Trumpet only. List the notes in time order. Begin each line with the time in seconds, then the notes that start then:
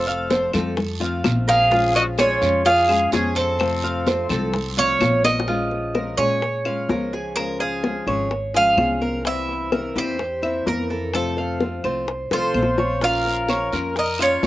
Already playing: A4
1.49 G#4
1.95 F#4
2.19 F4
2.65 G#4
3.12 C#4
3.36 C4
12.33 F4
13.04 A#4
13.98 A#4
14.21 F4